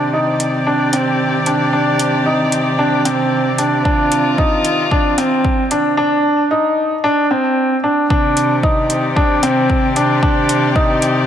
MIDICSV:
0, 0, Header, 1, 5, 480
1, 0, Start_track
1, 0, Key_signature, -3, "minor"
1, 0, Tempo, 530973
1, 1564, Time_signature, 4, 2, 24, 8
1, 10185, End_track
2, 0, Start_track
2, 0, Title_t, "String quartet"
2, 0, Program_c, 0, 48
2, 0, Note_on_c, 0, 51, 71
2, 0, Note_on_c, 0, 60, 61
2, 0, Note_on_c, 0, 67, 75
2, 0, Note_on_c, 0, 74, 65
2, 3442, Note_off_c, 0, 67, 0
2, 3483, Note_on_c, 0, 65, 85
2, 5362, Note_off_c, 0, 51, 0
2, 5363, Note_off_c, 0, 60, 0
2, 5363, Note_off_c, 0, 74, 0
2, 5384, Note_off_c, 0, 65, 0
2, 7328, Note_on_c, 0, 60, 71
2, 7329, Note_on_c, 0, 51, 78
2, 7330, Note_on_c, 0, 67, 86
2, 7330, Note_on_c, 0, 74, 72
2, 10185, Note_off_c, 0, 51, 0
2, 10185, Note_off_c, 0, 60, 0
2, 10185, Note_off_c, 0, 67, 0
2, 10185, Note_off_c, 0, 74, 0
2, 10185, End_track
3, 0, Start_track
3, 0, Title_t, "Upright piano"
3, 0, Program_c, 1, 0
3, 120, Note_on_c, 1, 63, 66
3, 513, Note_off_c, 1, 63, 0
3, 602, Note_on_c, 1, 62, 78
3, 799, Note_off_c, 1, 62, 0
3, 842, Note_on_c, 1, 60, 72
3, 1234, Note_off_c, 1, 60, 0
3, 1322, Note_on_c, 1, 62, 66
3, 1519, Note_off_c, 1, 62, 0
3, 1564, Note_on_c, 1, 62, 83
3, 1956, Note_off_c, 1, 62, 0
3, 2041, Note_on_c, 1, 63, 73
3, 2434, Note_off_c, 1, 63, 0
3, 2520, Note_on_c, 1, 62, 84
3, 2717, Note_off_c, 1, 62, 0
3, 2759, Note_on_c, 1, 60, 77
3, 3152, Note_off_c, 1, 60, 0
3, 3239, Note_on_c, 1, 62, 68
3, 3437, Note_off_c, 1, 62, 0
3, 3480, Note_on_c, 1, 62, 83
3, 3874, Note_off_c, 1, 62, 0
3, 3961, Note_on_c, 1, 63, 79
3, 4354, Note_off_c, 1, 63, 0
3, 4441, Note_on_c, 1, 62, 83
3, 4638, Note_off_c, 1, 62, 0
3, 4682, Note_on_c, 1, 60, 77
3, 5074, Note_off_c, 1, 60, 0
3, 5163, Note_on_c, 1, 62, 75
3, 5359, Note_off_c, 1, 62, 0
3, 5400, Note_on_c, 1, 62, 91
3, 5793, Note_off_c, 1, 62, 0
3, 5883, Note_on_c, 1, 63, 81
3, 6275, Note_off_c, 1, 63, 0
3, 6363, Note_on_c, 1, 62, 90
3, 6559, Note_off_c, 1, 62, 0
3, 6605, Note_on_c, 1, 60, 77
3, 6996, Note_off_c, 1, 60, 0
3, 7084, Note_on_c, 1, 62, 76
3, 7280, Note_off_c, 1, 62, 0
3, 7326, Note_on_c, 1, 62, 94
3, 7717, Note_off_c, 1, 62, 0
3, 7803, Note_on_c, 1, 63, 81
3, 8195, Note_off_c, 1, 63, 0
3, 8282, Note_on_c, 1, 62, 89
3, 8479, Note_off_c, 1, 62, 0
3, 8524, Note_on_c, 1, 60, 80
3, 8916, Note_off_c, 1, 60, 0
3, 9006, Note_on_c, 1, 62, 72
3, 9201, Note_off_c, 1, 62, 0
3, 9244, Note_on_c, 1, 62, 91
3, 9636, Note_off_c, 1, 62, 0
3, 9724, Note_on_c, 1, 63, 83
3, 10115, Note_off_c, 1, 63, 0
3, 10185, End_track
4, 0, Start_track
4, 0, Title_t, "Cello section"
4, 0, Program_c, 2, 48
4, 0, Note_on_c, 2, 48, 80
4, 5401, Note_off_c, 2, 48, 0
4, 7325, Note_on_c, 2, 48, 87
4, 10185, Note_off_c, 2, 48, 0
4, 10185, End_track
5, 0, Start_track
5, 0, Title_t, "Drums"
5, 361, Note_on_c, 9, 42, 48
5, 451, Note_off_c, 9, 42, 0
5, 840, Note_on_c, 9, 42, 54
5, 931, Note_off_c, 9, 42, 0
5, 1322, Note_on_c, 9, 42, 57
5, 1413, Note_off_c, 9, 42, 0
5, 1803, Note_on_c, 9, 42, 60
5, 1894, Note_off_c, 9, 42, 0
5, 2281, Note_on_c, 9, 42, 55
5, 2371, Note_off_c, 9, 42, 0
5, 2761, Note_on_c, 9, 42, 60
5, 2851, Note_off_c, 9, 42, 0
5, 3240, Note_on_c, 9, 42, 59
5, 3331, Note_off_c, 9, 42, 0
5, 3482, Note_on_c, 9, 36, 97
5, 3573, Note_off_c, 9, 36, 0
5, 3721, Note_on_c, 9, 42, 66
5, 3812, Note_off_c, 9, 42, 0
5, 3962, Note_on_c, 9, 36, 99
5, 4052, Note_off_c, 9, 36, 0
5, 4200, Note_on_c, 9, 42, 58
5, 4290, Note_off_c, 9, 42, 0
5, 4442, Note_on_c, 9, 36, 97
5, 4532, Note_off_c, 9, 36, 0
5, 4682, Note_on_c, 9, 42, 61
5, 4772, Note_off_c, 9, 42, 0
5, 4922, Note_on_c, 9, 36, 98
5, 5013, Note_off_c, 9, 36, 0
5, 5161, Note_on_c, 9, 42, 59
5, 5251, Note_off_c, 9, 42, 0
5, 7325, Note_on_c, 9, 36, 109
5, 7415, Note_off_c, 9, 36, 0
5, 7564, Note_on_c, 9, 42, 63
5, 7655, Note_off_c, 9, 42, 0
5, 7805, Note_on_c, 9, 36, 107
5, 7895, Note_off_c, 9, 36, 0
5, 8044, Note_on_c, 9, 42, 56
5, 8134, Note_off_c, 9, 42, 0
5, 8285, Note_on_c, 9, 36, 107
5, 8375, Note_off_c, 9, 36, 0
5, 8524, Note_on_c, 9, 42, 58
5, 8614, Note_off_c, 9, 42, 0
5, 8765, Note_on_c, 9, 36, 96
5, 8856, Note_off_c, 9, 36, 0
5, 9005, Note_on_c, 9, 42, 56
5, 9095, Note_off_c, 9, 42, 0
5, 9245, Note_on_c, 9, 36, 104
5, 9335, Note_off_c, 9, 36, 0
5, 9484, Note_on_c, 9, 42, 64
5, 9574, Note_off_c, 9, 42, 0
5, 9724, Note_on_c, 9, 36, 105
5, 9814, Note_off_c, 9, 36, 0
5, 9963, Note_on_c, 9, 42, 62
5, 10054, Note_off_c, 9, 42, 0
5, 10185, End_track
0, 0, End_of_file